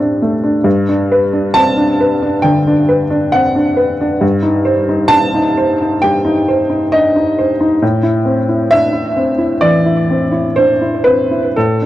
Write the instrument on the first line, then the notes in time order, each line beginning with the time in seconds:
upright piano
Already playing: G3 A3 C4 A4
0.00 D4
0.22 A3
0.44 D4
0.64 G2
0.89 D4
1.12 B4
1.33 D4
1.54 C4 A5
1.77 D4
2.01 B4
2.22 D4
2.42 D3 G5
2.67 D4
2.89 B4
3.10 D4
3.32 C4 F#5
3.56 D4
3.77 B4
4.01 D4
4.21 G2
4.43 D#4
4.65 C5
4.89 D#4
5.08 D4 A5
5.34 D#4
5.57 C5
5.82 D#4
6.02 G3 G5
6.25 D#4
6.48 C5
6.70 D#4
6.92 D4 D#5
7.16 D#4
7.38 C5
7.61 D#4
7.82 A2
8.03 E4
8.25 C4
8.49 E4
8.71 D4 E5
8.93 E4
9.16 C4
9.38 E4
9.61 E3 D5
9.86 E4
10.10 C4
10.32 E4
10.56 D4 C5
10.81 E4
11.04 C4 B4
11.31 E4
11.56 A2 A4
11.82 D4